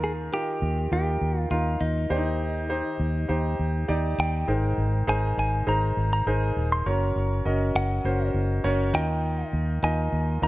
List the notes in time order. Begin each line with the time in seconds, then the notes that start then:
Already playing: D#2 D#3 D#4 F4 A#4
0.04 G#4
0.32 D#4 F4 G4 A#4
0.62 D#2
0.92 D#2 D#4 F4 G4 A#4
1.21 D#2
1.40 F4
1.51 D#2 D#4 F4 A#4
1.81 D#2 D#4
2.10 D#2 D#3 D4 G4 C5
2.17 D#4
2.69 D#4 G4 C5
3.00 D#2
3.28 D#2 D#4 G4 C5
3.59 D#2
3.88 D#2 D#4 G4 D5
4.18 D#2 G5
4.48 G#1 G#2 D#4 G#4 A#4 C5
4.78 G#1
5.07 G#1 D#4 G#4 A#4 C5 G#5
5.37 G#1 G#5
5.67 G#1 D#4 G#4 A#4 C5 A#5
5.97 G#1
6.13 A#5
6.27 G#1 D#4 G#4 A#4 C5 G#5
6.56 D#1
6.72 C6
6.86 F#1 C#4 F#4 A#4 C#5 A#5
7.16 F#1
7.45 F#1 C#4 F#4 A#4 D#5
7.75 F#1 F#5
8.04 F#1 C#4 F#4 A#4 C5
8.34 F#1
8.64 F#1 C#4 F#4 A#4 C#5
8.93 D#2 D#3 D#4 F4 A#4 D#5 G5
9.53 D#2
9.83 D#2 D#4 F4 A#4 D#5 G#5
10.13 D#2
10.42 D#2 D#4 F4 A#4 D#5 A#5